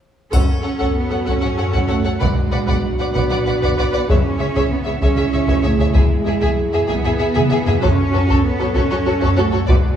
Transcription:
0.32 double bass section F#2, cello section C#4, french horn section F#4 A4, viola section A4, violin section C#5 F#5, taiko, triangle
0.63 double bass section F#2, viola section A4, violin section C#5 F#5
0.79 double bass section F#2, viola section A4, violin section C#5 F#5, taiko
0.96 cello section B3
1.10 double bass section F#2, viola section A4, violin section C#5 F#5
1.26 double bass section F#2, cello section C#4, viola section A4, violin section C#5 F#5, taiko
1.41 double bass section F#2, viola section A4, violin section C#5 F#5
1.57 double bass section F#2, viola section A4, violin section C#5 F#5
1.73 double bass section F#2, viola section A4, violin section C#5 F#5, taiko
1.88 double bass section F#2, cello section A3, viola section A4, violin section C#5 F#5
2.04 double bass section F#2, viola section A4, violin section C#5 F#5
2.19 double bass section B1, cello section G#3, french horn section D4 F#4, viola section B4, violin section D5 F#5, taiko
2.51 double bass section B1, viola section B4, violin section D5 F#5
2.67 double bass section B1, viola section B4, violin section D5 F#5, taiko
2.85 cello section F#3
2.99 double bass section B1, viola section B4, violin section D5 F#5
3.14 double bass section B1, cello section B3, viola section B4, violin section D5 F#5, taiko
3.29 double bass section B1, viola section B4, violin section D5 F#5
3.46 double bass section B1, viola section B4, violin section D5 F#5
3.62 double bass section B1, viola section B4, violin section D5 F#5, taiko
3.77 double bass section B1, viola section B4, violin section D5 F#5
3.93 double bass section B1, viola section B4, violin section D5 F#5
4.09 double bass section C#2, cello section C#4, french horn section E4 G#4, viola section G#4, violin section C#5 E5, taiko
4.39 double bass section C#2, viola section G#4, violin section C#5 E5
4.55 double bass section C#2, viola section G#4, violin section C#5 E5, taiko
4.71 cello section B3
4.85 double bass section C#2, viola section G#4, violin section C#5 E5
5.01 double bass section C#2, cello section C#4, viola section G#4, violin section C#5 E5, taiko
5.16 double bass section C#2, viola section G#4, violin section C#5 E5
5.32 double bass section C#2, viola section G#4, violin section C#5 E5
5.47 double bass section C#2, viola section G#4, violin section C#5 E5, taiko
5.62 double bass section C#2, cello section A3, viola section G#4, violin section C#5 E5
5.78 double bass section C#2, viola section G#4, violin section C#5 E5
5.94 double bass section E2, cello section G#3, viola section G#4, violin section G#4 E5, taiko
6.25 double bass section E2, viola section G#4, violin section G#4 E5
6.41 double bass section E2, viola section G#4, violin section G#4 E5, taiko
6.58 cello section F#3
6.73 double bass section E2, violin section G#4 E5, viola section G#4
6.88 double bass section E2, cello section B3, violin section G#4 E5, viola section G#4, taiko
7.04 double bass section E2, violin section G#4 E5, viola section G#4
7.18 double bass section E2, violin section G#4 E5, viola section G#4
7.34 double bass section E2, violin section G#4 E5, viola section G#4, taiko mid
7.50 double bass section E2, viola section G#4, violin section G#4 E5, taiko mid
7.65 double bass section E2, viola section G#4, violin section G#4 E5, taiko low
7.81 double bass section F#2, cello section C#4, viola section F#4, violin section A4 C#5, french horn section A4 C#5, taiko
8.12 double bass section F#2, viola section F#4, violin section A4 C#5
8.28 double bass section F#2, viola section F#4, violin section A4 C#5, taiko
8.45 cello section B3
8.59 double bass section F#2, viola section F#4, violin section A4 C#5
8.75 double bass section F#2, cello section C#4, viola section F#4, violin section A4 C#5, taiko
8.90 double bass section F#2, viola section F#4, violin section A4 C#5
9.06 double bass section F#2, viola section F#4, violin section A4 C#5
9.20 double bass section F#2, viola section F#4, violin section A4 C#5, taiko
9.36 double bass section F#2, cello section A3, viola section F#4, violin section A4 C#5
9.52 double bass section F#2, viola section F#4, violin section A4 C#5
9.67 double bass section B1, cello section G#3, viola section F#4, french horn section F#4 D5, violin section B4 D5, taiko

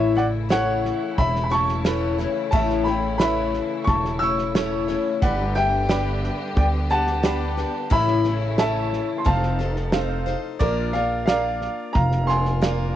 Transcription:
Already playing: upright bass A1, steel-string acoustic guitar A2 E3 A3 C#4 E4 C#5, string section C#3 E3 A3 E4, upright piano C#5 E5
0.15 steel-string acoustic guitar A3 E4, upright piano D5 F#5, snare
0.49 steel-string acoustic guitar A3 C#4 E4 C#5, honky-tonk piano E4 A4 C#5, upright piano C#5 F#5, snare, hi-hat pedal
0.85 snare
1.18 upright bass E1, upright piano E5 B5, kick, snare
1.35 snare
1.44 upright piano B5
1.50 steel-string acoustic guitar A3 C#4 E4 C#5, upright piano A5 C#6, snare
1.68 snare
1.84 steel-string acoustic guitar A3 C#4 E4 C#5, honky-tonk piano E4 A4 B4, snare, hi-hat pedal
2.18 steel-string acoustic guitar A3 C#4 E4 C#5, snare
2.51 upright bass A1, steel-string acoustic guitar A2 E3 A3 C#4 E4 C#5, upright piano E5 A5, kick, snare
2.70 snare
2.84 steel-string acoustic guitar A3 C#4 E4 C#5, upright piano G5 B5, snare
3.18 steel-string acoustic guitar A3 C#4 E4 C#5, honky-tonk piano E4 A4 B4, upright piano E5 B5, snare, hi-hat pedal
3.54 snare
3.84 upright bass E1, upright piano A5 C#6, kick, snare
4.05 snare
4.19 steel-string acoustic guitar A3 C#4 E4 C#5, upright piano C#6 E6, snare
4.38 snare
4.55 steel-string acoustic guitar A3 C#4 E4 C#5, honky-tonk piano E4 A4 C#5, snare, hi-hat pedal
4.88 steel-string acoustic guitar A3 C#4 E4 C#5, snare
5.21 upright bass G1, string section D3 G3 B3 G4, steel-string acoustic guitar G3 D4 G4 B4, upright piano D5 F#5, kick, snare
5.55 steel-string acoustic guitar D4 G4 B4, upright piano E5 G5, snare
5.89 steel-string acoustic guitar G3 D4 G4 B4, honky-tonk piano G4 B4 D5, snare, hi-hat pedal
6.24 snare
6.57 upright bass D2, upright piano D5 G5, kick, snare
6.90 steel-string acoustic guitar D4 G4 B4, upright piano F#5 A5, snare
7.07 snare
7.23 steel-string acoustic guitar G3 D4 G4 B4, honky-tonk piano G4 B4 D5, snare, hi-hat pedal
7.57 steel-string acoustic guitar D4 G4 B4, snare
7.90 upright bass A1, steel-string acoustic guitar A2 E3 A3 C#4 E4 C#5, string section C#3 E3 A3 E4, upright piano E5 B5, kick, snare
8.08 snare
8.24 steel-string acoustic guitar A3 C#4 E4 C#5, snare
8.58 steel-string acoustic guitar A3 C#4 E4 C#5, honky-tonk piano A4 C#5 E5, upright piano E5 A5, snare, hi-hat pedal
8.93 snare
9.18 upright piano C6
9.24 upright bass F1, string section C3 F3 D#4, steel-string acoustic guitar F3 C4 D#4 A4 C5, upright piano F5 A5, kick, snare
9.43 snare
9.59 steel-string acoustic guitar D#4 A4 C5, snare
9.76 snare
9.92 steel-string acoustic guitar C4 D#4 A4 C5, honky-tonk piano A4 C5 F5, snare, hi-hat pedal
10.26 steel-string acoustic guitar D#4 A4 C5, snare
10.59 upright bass A#1, steel-string acoustic guitar A#2 F3 A#3 D4 F4 A#4, upright piano A#4 D5, kick, snare
10.93 steel-string acoustic guitar A#3 D4 F4 A#4, upright piano D5 F5, snare
11.26 steel-string acoustic guitar A#3 D4 F4 A#4, honky-tonk piano A#4 D5 F5, upright piano D5 F5, snare, hi-hat pedal
11.61 snare
11.93 upright bass F1, upright piano F5 A#5, kick, snare
12.11 snare
12.27 steel-string acoustic guitar A#3 D4 F4 A#4, upright piano G#5 C6, snare
12.45 snare
12.62 steel-string acoustic guitar A#3 D4 F4 A#4, honky-tonk piano A#4 D5 F5, snare, hi-hat pedal

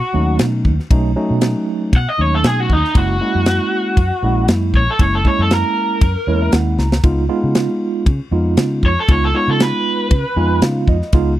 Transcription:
Already playing: overdriven electric guitar F#4
0.13 fingered electric bass D#2, tine electric piano F#3 A3 C#4 D#4
0.39 fingered electric bass B2, snare, ride bell
0.65 fingered electric bass D#2, kick
0.80 snare
0.91 fingered electric bass B1, tine electric piano F#3 A3 C#4 D#4, kick, ride bell
1.16 tine electric piano F#3 A3 C#4 D#4
1.30 fingered electric bass B2
1.41 snare, ride bell
1.93 fingered electric bass B2, overdriven electric guitar F#5, kick, ride bell
2.10 overdriven electric guitar D#5
2.18 fingered electric bass D#2, tine electric piano F#3 A3 C#4 D#4, overdriven electric guitar C#5
2.35 overdriven electric guitar A4
2.44 fingered electric bass B2, overdriven electric guitar G#4, snare, ride bell
2.60 overdriven electric guitar F#4
2.69 fingered electric bass D#2, overdriven electric guitar D#4, kick
2.84 snare
2.95 fingered electric bass F#1, tine electric piano G#3 A#3 C#4 E4, overdriven electric guitar F#4, kick, ride bell
3.21 tine electric piano G#3 A#3 C#4 E4
3.35 fingered electric bass F#2
3.46 snare, ride bell
3.97 fingered electric bass F#2, kick, ride bell
4.23 fingered electric bass A#1, tine electric piano G#3 A#3 C#4 E4
4.48 fingered electric bass F#2, snare, ride bell
4.74 fingered electric bass A#1, overdriven electric guitar C#5, kick
4.91 overdriven electric guitar A4
4.99 fingered electric bass F#1, tine electric piano G#3 A#3 C#4 E4, overdriven electric guitar C#5, kick, ride bell
5.15 overdriven electric guitar A4
5.25 tine electric piano G#3 A#3 C#4 E4, overdriven electric guitar C#5, kick
5.39 fingered electric bass F#2, overdriven electric guitar A4
5.51 overdriven electric guitar A#4, snare, ride bell
6.01 fingered electric bass F#2, kick, ride bell
6.27 fingered electric bass E2, tine electric piano G#3 A#3 C#4 E4 C#5
6.42 tine electric piano E5
6.52 fingered electric bass D#2, tine electric piano F#5, snare, ride bell
6.78 fingered electric bass C#2, tine electric piano A#5, snare
6.92 snare
7.04 fingered electric bass C#2, tine electric piano G#3 B3 D#4 F4, kick, ride bell
7.29 tine electric piano G#3 B3 D#4 F4
7.44 fingered electric bass C#3
7.55 snare, ride bell
8.06 fingered electric bass C#3, kick, ride bell
8.31 fingered electric bass F2, tine electric piano G#3 B3 D#4 F4
8.57 fingered electric bass C#3, snare, ride bell
8.83 fingered electric bass F2, overdriven electric guitar C#5, kick
9.00 overdriven electric guitar A4
9.08 fingered electric bass C#2, tine electric piano G#3 B3 D#4 F4, overdriven electric guitar C#5, kick, ride bell
9.25 overdriven electric guitar A4
9.34 tine electric piano G#3 B3 D#4 F4, overdriven electric guitar C#5
9.48 fingered electric bass C#3, overdriven electric guitar A4
9.60 overdriven electric guitar B4, snare, ride bell
10.11 fingered electric bass C#3, kick, ride bell
10.36 fingered electric bass F2, tine electric piano G#3 B3 D#4 F4 G#5
10.62 fingered electric bass C#3, tine electric piano F5, snare, ride bell
10.88 fingered electric bass F2, tine electric piano D#5, kick
11.02 snare
11.13 fingered electric bass C#2, tine electric piano G#3 B3 D#4 F4, kick, ride bell

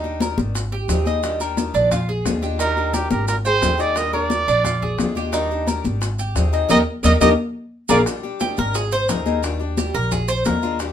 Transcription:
Already playing: upright bass D#2, cuban tres D#4
0.04 steel-string acoustic guitar G3 D4 G4, high conga
0.20 steel-string acoustic guitar D#3 G3 D4 G4, cuban tres A#4, high bongo, high conga, maracas
0.38 upright bass G#1, high bongo, high conga, maracas
0.55 muted steel-string acoustic guitar stroke, high bongo, high conga, maracas
0.71 cuban tres G4, high bongo, high conga
0.88 upright bass D#2, steel-string acoustic guitar G3 C4 D#4 G#4, high bongo, low bongo, high conga, maracas
1.05 steel-string acoustic guitar G3 C4 D#4 G#4, cuban tres D#5, high bongo, high conga, maracas
1.23 steel-string acoustic guitar D#3 G3 D4 G4, high bongo, high conga, maracas
1.40 steel-string acoustic guitar G3 D4 G4, cuban tres A#4, high bongo, high conga, maracas
1.57 steel-string acoustic guitar D#3 G3 D4 G4, high bongo, high conga, maracas
1.74 upright bass A#1, cuban tres D4, high conga, maracas
1.91 cuban tres F4, muted steel-string acoustic guitar stroke, high bongo, high conga, low conga, maracas
2.08 cuban tres G#4, high bongo, high conga
2.25 upright bass D#2, steel-string acoustic guitar F3 G#3 D4 F4, high bongo, low bongo, high conga, maracas
2.42 steel-string acoustic guitar G#3 D4 F4, cuban tres G4, high bongo, high conga, maracas
2.59 steel-string acoustic guitar D#3 G3 D4 G4, cuban tres D#4, nylon-string guitar G4, trumpet A#4, high bongo, high conga, maracas
2.76 steel-string acoustic guitar G3 D4 G4, high conga
2.93 steel-string acoustic guitar D#3 G3 D4 G4, nylon-string guitar D#4, trumpet G4, cuban tres A#4, high bongo, high conga, maracas
3.11 upright bass G#1, nylon-string guitar G4, trumpet A#4, high bongo, high conga, maracas
3.28 nylon-string guitar G4, trumpet A#4, muted steel-string acoustic guitar stroke, high bongo, high conga, maracas
3.45 nylon-string guitar G#4, trumpet C5, cuban tres G5, high bongo, high conga, maracas
3.62 upright bass D#2, steel-string acoustic guitar G3 C4 D#4 G#4, high bongo, low bongo, high conga, maracas
3.78 steel-string acoustic guitar G3 C4 D#4 G#4, nylon-string guitar A#4, trumpet D5, cuban tres D#5, high bongo, maracas
3.95 steel-string acoustic guitar D#3 G3 D4 G4, nylon-string guitar A#4, trumpet D#5, high bongo, high conga, maracas
4.13 steel-string acoustic guitar G3 D4 G4, nylon-string guitar A#4, cuban tres A#4, trumpet D5, high bongo, high conga
4.29 steel-string acoustic guitar D#3 G3 D4 G4, high bongo, high conga, maracas
4.47 upright bass A#1, cuban tres D4, high conga, maracas
4.64 cuban tres F4, muted steel-string acoustic guitar stroke, high bongo, high conga, low conga, maracas
4.82 cuban tres G#4, high bongo, high conga, low conga
4.98 upright bass D#2, steel-string acoustic guitar F3 G#3 D4 F4, high bongo, low bongo, high conga, maracas
5.15 steel-string acoustic guitar G#3 D4 F4, cuban tres G4, high bongo, high conga, maracas
5.32 steel-string acoustic guitar D#3 G3 D4 G4, cuban tres D#4, high bongo, high conga, maracas
5.51 steel-string acoustic guitar G3 D4 G4, high conga
5.67 steel-string acoustic guitar D#3 G3 D4 G4, cuban tres A#4, high bongo, high conga, maracas
5.84 upright bass G#1, high bongo, high conga, maracas
6.01 muted steel-string acoustic guitar stroke, high bongo, high conga, maracas
6.19 cuban tres G4, high bongo, high conga, maracas
6.35 upright bass D#2, steel-string acoustic guitar G3 C4 D#4 G#4, high bongo, low bongo, high conga, maracas
6.53 steel-string acoustic guitar G3 C4 D#4 G#4, cuban tres D#5, high bongo, maracas
6.69 upright bass D#2, steel-string acoustic guitar A#3 D4 D#4, cuban tres D#4 G4 A#4, nylon-string guitar A#4 D5 D#5, trumpet D#5, low bongo, high conga, maracas
7.03 upright bass D#2, steel-string acoustic guitar A#3 D4 D#4, cuban tres D#4 G4 A#4, nylon-string guitar A#4 D5 D#5, trumpet D#5, low bongo, high conga, maracas
7.20 upright bass D#2, steel-string acoustic guitar A#3 D4 D#4, cuban tres D#4 G4 A#4, nylon-string guitar A#4 D5 D#5, trumpet D#5, low bongo, high conga, maracas
7.89 upright bass A#1, steel-string acoustic guitar A#3 D4 F4, cuban tres F4 G#4 A#4, nylon-string guitar G#4 A#4 D5, trumpet D5, low bongo, high conga, maracas
8.06 steel-string acoustic guitar D#3 G3 D4 G4, high bongo, maracas
8.23 steel-string acoustic guitar G3 D4 G4, high conga
8.40 steel-string acoustic guitar D#3 G3 D4 G4, cuban tres G4, high bongo, high conga, maracas
8.57 upright bass G#1, cuban tres A#4, high bongo, high conga, maracas
8.74 cuban tres G#4, muted steel-string acoustic guitar stroke, high bongo, high conga, maracas
8.92 cuban tres C5, high bongo, high conga, maracas
9.09 upright bass D#2, steel-string acoustic guitar G3 C4 D#4 G#4, cuban tres A#4, high bongo, low bongo, high conga, maracas
9.26 steel-string acoustic guitar G3 C4 D#4 G#4, high bongo, high conga, maracas
9.42 steel-string acoustic guitar D#3 G3 D4 G4, high bongo, high conga, maracas
9.60 steel-string acoustic guitar G3 D4 G4, high bongo, high conga
9.77 steel-string acoustic guitar D#3 G3 D4 G4, cuban tres G4, high bongo, high conga, maracas
9.94 upright bass A#1, cuban tres A#4, high conga, maracas
10.11 cuban tres G#4, muted steel-string acoustic guitar stroke, high bongo, high conga, low conga, maracas
10.28 cuban tres C5, high bongo, high conga, maracas
10.45 upright bass D#2, steel-string acoustic guitar F3 G#3 D4 F4, cuban tres A#4, high bongo, low bongo, high conga, maracas
10.62 steel-string acoustic guitar G#3 D4 F4, high bongo, high conga, maracas
10.79 steel-string acoustic guitar D#3 G3 D4 G4, high bongo, high conga, maracas

